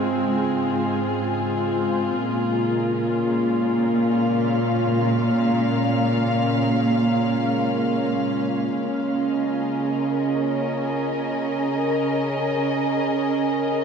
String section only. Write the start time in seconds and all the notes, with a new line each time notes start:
Already playing: G#2 C4 F4 G#4
2.16 A#2
2.24 A#3
3.04 C#4
3.92 F5
8.82 C#3
9.19 A#4 D#5
9.30 G#4